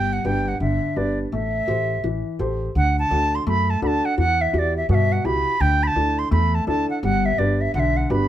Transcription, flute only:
Already playing: G5
0.13 F#5
0.26 G5
0.48 F#5
0.61 E5
0.97 D5
1.33 E5
2.77 F#5
2.99 A5
3.35 C6
3.48 B5
3.70 A5
3.84 A5 B5
4.05 F#5
4.18 F#5
4.41 E5
4.55 D5 E5
4.77 E5
4.91 E5 F#5
5.12 F#5
5.25 B5
5.61 G5
5.83 B5
5.87 A5
6.19 C6
6.32 B5
6.55 A5
6.68 A5
6.90 F#5
7.03 F#5
7.26 E5
7.39 D5
7.61 E5
7.75 F#5
7.80 E5
7.97 F#5
8.11 B5

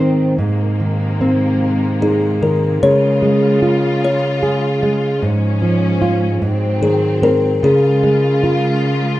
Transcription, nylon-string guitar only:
Already playing: G#2 D#3 G#3 C4 C5
0.38 G#2
0.80 D#3
1.21 C4
2.02 D#4
2.42 D#3
2.83 C#3
3.22 G#3
3.62 F4
4.43 G#4
4.83 G#3
5.22 G#2
5.62 F3
6.02 F4
6.42 G#2
6.81 D#3
7.22 C4
7.63 C#3
8.03 G#3
8.44 F4

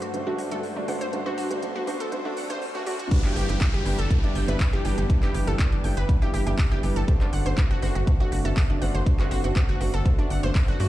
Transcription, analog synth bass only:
3.24 G1
3.36 G1
3.49 G1
3.74 G1
3.86 G1
3.99 G1
4.23 G1
4.35 G1
4.48 G1
4.73 G1
4.85 G1
4.98 G1
5.23 G1
5.34 G1
5.47 G1
5.72 G1
5.84 G1
5.97 G1
6.22 G1
6.34 G1
6.47 G1
6.71 G1
6.83 G1
6.96 G1
7.21 G1
7.33 G1
7.46 G1
7.71 G1
7.82 G1
7.95 G1
8.20 G1
8.32 G1
8.45 G1
8.70 G1
8.82 G1
8.95 G1
9.19 G1
9.31 G1
9.44 G1
9.69 G1
9.81 G1
9.94 G1
10.18 G1
10.30 G1
10.43 G1
10.68 G1
10.80 G2

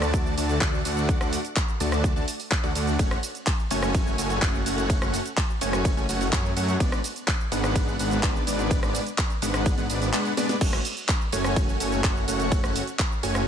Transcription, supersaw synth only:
Already playing: A3 D4 F#4 D5 A5
0.37 A3 D4 F#4 D5 A5
0.85 A3 D4 F#4 D5 F#5
1.21 A3 D4 F#4 D5 F#5
1.80 A3 D4 F#4 D5 A5
2.16 A3 D4 F#4 D5 A5
2.64 A3 D4 F#4 D5 F#5
2.75 A3 D4 F#4 D5 F#5
2.99 A3 C#4 F#4 C#5 F#5
3.71 A3 C#4 F#4 C#5 G#5
4.18 A3 C#4 F#4 C#5 G#5
4.42 A3 C#4
4.66 A3 C#4 F#4 C#5 F#5
5.02 A3 C#4 F#4 C#5 F#5
5.61 A3 C#4 F#4 C#5 G#5
5.97 A3 C#4 F#4 C#5 G#5
6.09 A3 C#4 F#4 C#5 F#5
6.33 A3 C#4 F#4 C#5 G#5
6.57 A3 C#4 F#4 C#5 F#5
6.80 G#3 B3 D4 B4 D5
7.52 G#3 B3 D4 B4 F#5
7.99 G#3 B3 D4 B4 F#5
8.23 G#3 B3 D4 B4 D5
8.47 G#3 B3 D4 B4 D5
8.83 G#3 B3 D4 B4 D5
9.42 G#3 B3 D4 B4 F#5
9.78 G#3 B3 D4 B4 F#5
9.90 G#3 B3 D4 B4 D5
10.14 G#3 B3 D4 B4 F#5
10.37 G#3 B3 D4 B4 D5
10.61 A3 C#4 F#4 F#5
11.33 A3 C#4 F#4 C#5 G#5
11.80 A3 C#4 F#4 C#5 G#5
12.28 A3 C#4 F#4 C#5 F#5
12.64 A3 C#4 F#4 C#5 F#5
13.23 A3 C#4 F#4 C#5 G#5

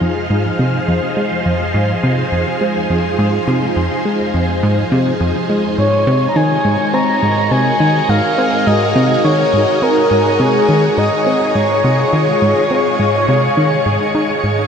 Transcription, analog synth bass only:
0.01 F2
0.30 G#2
0.59 C3
0.88 F2
1.17 G#3
1.46 F2
1.74 G#2
2.03 C3
2.32 F2
2.61 G#3
2.90 F2
3.19 G#2
3.48 C3
3.76 F2
4.05 G#3
4.34 F2
4.63 G#2
4.92 C3
5.21 F2
5.49 G#3
5.78 G#2
6.07 C3
6.36 D#3
6.65 G#2
6.94 C4
7.23 G#2
7.51 C3
7.80 D#3
8.09 G#2
8.38 C4
8.67 G#2
8.96 C3
9.24 D#3
9.53 G#2
9.82 C4
10.11 G#2
10.40 C3
10.69 D#3
10.98 G#2
11.26 C4
11.55 G#2
11.84 C3
12.13 D#3
12.42 G#2
12.71 C4
12.99 G#2
13.28 C3
13.57 D#3
13.86 G#2
14.15 D#4
14.44 G#2

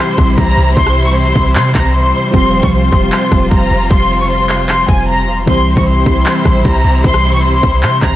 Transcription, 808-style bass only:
0.18 A#1
0.38 C2
0.57 C2
0.77 C2
1.36 C2
1.55 C3
1.75 C2
2.34 F1
2.63 C2
2.93 F1
3.32 F1
3.51 F1
3.71 F1
3.90 F1
4.89 F1
5.28 E1
5.38 F1
5.47 C2
5.67 C#2
5.77 C2
6.06 C2
6.45 A#1
6.65 C2
6.85 C2
7.04 C2
7.63 C2
7.83 C3
8.02 C2

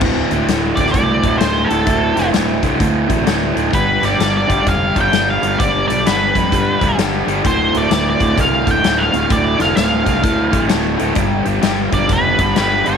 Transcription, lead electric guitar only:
0.76 D5
0.92 D5
1.38 C5
1.64 A4
3.75 B4
4.05 D5
4.37 D5
4.68 F5
5.01 G5
5.30 F5
5.59 D5
5.88 D5
6.07 B4
7.47 C5
7.77 D5
8.10 D5
8.41 F5
8.71 G5
8.99 F5
9.32 D5
9.62 F5
9.77 F5
11.94 D5
12.13 B4
12.58 B4
12.87 C#5

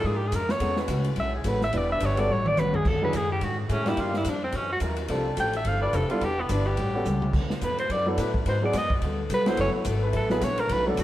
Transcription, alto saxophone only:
0.07 G#4
0.16 G4
0.27 G#4
0.36 A#4
0.51 C#5
1.20 E5
1.36 G#4
1.48 B4
1.64 E5
1.78 D5
1.92 E5
2.05 C#5
2.20 D5
2.32 C#5
2.48 D5
2.59 B4
2.76 G#4
2.89 A4
3.05 B4
3.17 G#4
3.33 G4
3.44 F#4
3.60 A3
3.73 C#4
3.89 E4
4.01 F4
4.17 E4
4.30 D4
4.44 C4
4.57 C#4
4.73 F#4
5.40 G5
5.57 E5
5.68 F5
5.83 D5
5.96 A4
6.11 F4
6.24 G4
6.41 B3
6.52 D4
6.67 G4
7.64 B4
7.80 C5
7.92 D5
8.49 C5
8.65 D5
8.77 D#5
9.34 B4
9.49 C5
9.61 C#5
10.17 A4
10.31 B4
10.44 C#5
10.60 A#4
10.72 B4
10.88 D4
11.00 F#4

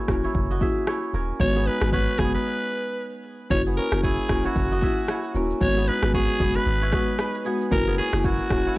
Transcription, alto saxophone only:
1.41 C#5
1.67 B4
1.93 B4
2.19 G#4
2.35 B4
3.51 C#5
3.77 A#4
4.04 G#4
4.45 F#4
5.62 C#5
5.88 B4
6.14 G#4
6.56 B4
7.72 A#4
7.98 G#4
8.19 G#4
8.25 F#4

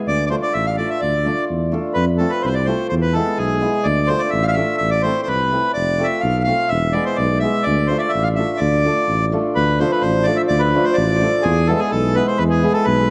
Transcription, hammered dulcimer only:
0.29 A3 D4 F4 A4
0.77 A3 D4 F4 A4
1.25 A3 D4 F4 A4
1.72 A3 D4 F4 A4
2.19 A3 C4 F4 A4
2.67 A3 C4 F4 A4
3.14 G#3 B3 E4 G#4
3.61 G#3 B3 E4 G#4
4.08 A3 D4 F4 A4
4.56 A3 D4 F4 A4
5.04 A3 C4 E4 A4
5.52 A3 C4 E4 A4
5.98 A3 C4 F4 A4
6.46 A3 C4 F4 A4
6.93 G#3 B3 E4 G#4
7.42 G#3 B3 E4 G#4
7.89 A3 D4 F4 A4
8.37 A3 D4 F4 A4
8.84 A3 D4 F4 A4
9.32 A3 D4 F4 A4
9.79 F3 A3 D4 F4 A4
10.26 F3 A3 D4 F4 A4
10.74 F3 A3 D4 F4 A4
11.20 F3 A3 D4 F4 A4
11.68 E3 G#3 B3 E4 G#4
12.15 E3 G#3 B3 E4 G#4
12.63 E3 G#3 B3 E4 G#4

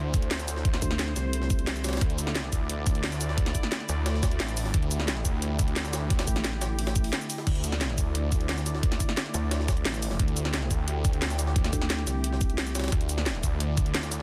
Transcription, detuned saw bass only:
Already playing: D2
0.31 D2
2.01 D2
2.52 D2
3.04 D2
3.89 D2
4.40 A1
4.74 D2
5.25 D2
5.76 D2
7.47 D2
7.98 D2
8.49 D2
9.34 D2
9.85 A1
10.20 D2
10.71 D2
11.22 D2
12.92 D2
13.43 D2
13.95 D2

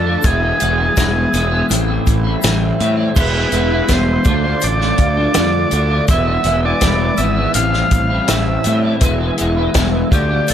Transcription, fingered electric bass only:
Already playing: F2
0.24 E1
0.62 E1
0.97 E1
1.34 E1
1.70 A1
2.07 A1
2.44 A1
2.80 A2
3.17 E1
3.52 E1
3.90 E1
4.26 D2
4.63 A1
4.99 D2
5.37 F2
5.72 D2
6.09 E1
6.44 E1
6.82 E1
7.18 G#1
7.55 A1
7.91 A1
8.30 A1
8.66 A2
9.02 E1
9.41 E1
9.75 E1
10.12 D2
10.50 A1

